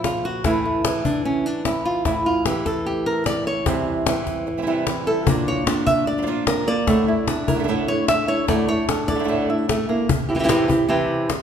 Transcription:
Already playing: nylon-string guitar A#2 F3 A#3
0.04 nylon-string guitar F4, cajon slap
0.24 nylon-string guitar F#4, cajon slap
0.44 nylon-string guitar A2 E3 A3 E4, cajon bass, cajon slap
0.66 nylon-string guitar A3
0.85 nylon-string guitar E3, cajon slap
1.05 nylon-string guitar D4, cajon bass
1.25 nylon-string guitar C#4
1.46 nylon-string guitar D4
1.65 nylon-string guitar E4, cajon slap
1.85 nylon-string guitar F4, cajon slap
2.05 nylon-string guitar A2 E4, cajon bass, cajon slap
2.26 nylon-string guitar F4
2.46 nylon-string guitar E3 G4, cajon slap
2.66 nylon-string guitar A4, cajon bass, cajon slap
2.86 nylon-string guitar G4
3.06 nylon-string guitar A#4
3.26 nylon-string guitar D5, cajon slap
3.46 nylon-string guitar C#5, cajon slap
3.66 nylon-string guitar C3 E3 G3 C4 E4 C5, cajon bass, cajon slap
4.06 nylon-string guitar E3 G3 C4 E4, cajon slap
4.27 cajon bass, cajon slap
4.47 muted nylon-string guitar stroke
4.58 nylon-string guitar E3 G3 C4 E4
4.62 nylon-string guitar E3 G3 C4 E4
4.67 nylon-string guitar C3 E3 G3 C4 E4
4.87 nylon-string guitar E3 G3 C4 E4, cajon slap
5.06 nylon-string guitar G3 C4 E4 A4, cajon slap
5.26 nylon-string guitar A#2 F3 A#3 D4 F4 A#4, cajon bass
5.48 nylon-string guitar C#5
5.66 nylon-string guitar A#3 D4 F4 D5, cajon slap
5.87 nylon-string guitar E5, cajon bass
6.07 nylon-string guitar D5, muted nylon-string guitar stroke
6.18 nylon-string guitar F3 A#3 D4 F4
6.22 nylon-string guitar F3 A#3 D4 F4
6.27 nylon-string guitar A#2 F3 A#3 D4 F4
6.47 nylon-string guitar F3 A#3 D4 F4 A#4, cajon slap
6.67 nylon-string guitar A#3 D4 F4 D5, cajon slap
6.87 nylon-string guitar A2 D3 A3 D4 E4, cajon bass, cajon slap
7.07 nylon-string guitar A3 D4 E4
7.28 nylon-string guitar D4, muted nylon-string guitar stroke, cajon slap
7.48 nylon-string guitar A3 D4 E4 A#4, cajon bass
7.55 nylon-string guitar D3 A3 D4 E4
7.59 nylon-string guitar D3 A3 D4 E4
7.64 nylon-string guitar D3 A3 D4 E4
7.68 nylon-string guitar A2 D3 A3 D4 E4 A4
7.88 nylon-string guitar A3 D4 E4 C#5
8.08 nylon-string guitar E5, muted nylon-string guitar stroke, cajon slap
8.27 nylon-string guitar A3 D4 E4 C#5
8.47 nylon-string guitar A2 D3 A3 D4 E4 D5, cajon bass, cajon slap
8.68 nylon-string guitar A3 D4 E4 C#5
8.88 nylon-string guitar D4 A4, muted nylon-string guitar stroke, cajon slap
9.08 nylon-string guitar A3 D4 E4 D5, cajon bass, cajon slap
9.15 nylon-string guitar D3 A3 D4 E4
9.19 nylon-string guitar D3 A3 D4 E4
9.24 nylon-string guitar D3 A3 D4 E4
9.28 nylon-string guitar A2 D3 A3 D4 E4
9.49 nylon-string guitar A3 D4 E4 E5
9.68 nylon-string guitar A3, muted nylon-string guitar stroke, cajon slap
9.89 nylon-string guitar A3 A#3 D4 E4, cajon slap
10.09 muted nylon-string guitar stroke, cajon bass
10.29 nylon-string guitar C4 E4 G4
10.35 nylon-string guitar E3 C4 E4 G4
10.39 nylon-string guitar E3 C4 E4 G4
10.44 nylon-string guitar E3 C4 E4 G4
10.49 nylon-string guitar C3 E3 C4 E4 G4, cajon slap
10.68 nylon-string guitar C4 E4 G4, cajon bass
10.89 nylon-string guitar C3 E3 C4 E4 G4
11.29 muted nylon-string guitar stroke, cajon slap

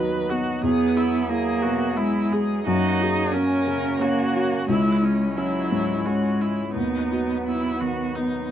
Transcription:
Already playing: felt piano D#2 D#3 B3 F#4, cello F#3, harmonium F#3 F#4 D#5, viola B4
0.30 felt piano B3, viola F#4
0.63 felt piano E2, cello B3, viola G#4, harmonium G#4 E5
0.96 viola E4, felt piano G#4
1.29 cello A#3, felt piano E4, viola G#4
1.62 felt piano B2, viola F#4
1.96 cello G#3, viola E4, felt piano E4
2.32 viola G#4, felt piano G#4
2.66 felt piano F#2, harmonium A#3 F#4 C#5, cello D#4, viola F#4
3.01 felt piano F#4, viola G#4
3.32 cello C#4, felt piano C#4, viola A#4
3.67 felt piano C#3
4.00 cello A#3, felt piano C#4, viola F#4
4.36 felt piano F#4
4.68 felt piano C#2, cello G#3, harmonium G#3 E4, viola E4
5.02 viola C#4, felt piano E4
5.35 cello F#3, felt piano C#4, viola E4
5.71 felt piano G#2
6.06 cello G#3, felt piano C#4, viola F#4
6.40 felt piano E4, viola E4
6.73 felt piano D#2, harmonium F#3 F#4 B4, cello B3, viola D#4
7.11 felt piano F#4
7.46 felt piano B3, viola E4
7.80 felt piano D#3, viola F#4
8.15 felt piano B3, viola D#4

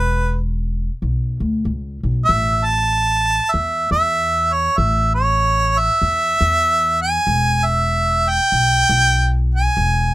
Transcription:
Already playing: upright bass E1, harmonica B4
1.02 upright bass B1
1.40 upright bass D2
1.65 upright bass C#2
2.03 upright bass B1
2.25 harmonica E5
2.29 upright bass A1
2.65 harmonica A5
3.52 upright bass E2, harmonica E5
3.91 upright bass E2, harmonica E5
4.53 harmonica C#5
4.78 upright bass A1, harmonica E5
5.15 harmonica C#5
5.78 harmonica E5
6.02 upright bass E2
6.41 upright bass E2
7.02 harmonica G#5
7.27 upright bass E1
7.65 harmonica E5
8.30 harmonica G5
8.52 upright bass B1
8.89 upright bass B1
9.55 harmonica G#5
9.77 upright bass E1

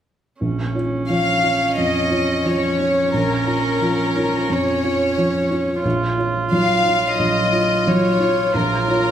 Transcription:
0.41 felt piano A#1, ambient pad F3 F4 C#5, viola C#4
0.75 felt piano F4 C#5
1.09 felt piano F3 F4 C#5, violin section F5
1.43 felt piano F4 C#5
1.77 felt piano F2, violin section D#5
2.11 felt piano F4 C#5
2.45 felt piano F3 F4 C#5, violin section C#5
2.80 felt piano F4 C#5
3.13 felt piano A#1, violin section A#4
3.47 felt piano F4 C#5
3.81 felt piano F3 F4 C#5
4.16 felt piano F4 C#5
4.49 felt piano F2, violin section C#5
4.84 felt piano F4 C#5
5.18 felt piano F3 F4 C#5
5.51 felt piano F4 C#5
5.84 felt piano A#1, ambient pad F#3 F4 C#5, viola F4
6.18 felt piano F4 C#5
6.51 felt piano F#3 F4 C#5, violin section F5
6.86 felt piano F4 C#5
7.19 felt piano A#1, violin section D#5
7.52 felt piano F4 C#5
7.87 felt piano F#3 F4 C#5, violin section C#5
8.20 felt piano F4 C#5
8.54 felt piano A#1, violin section A#4
8.88 felt piano F4 C#5

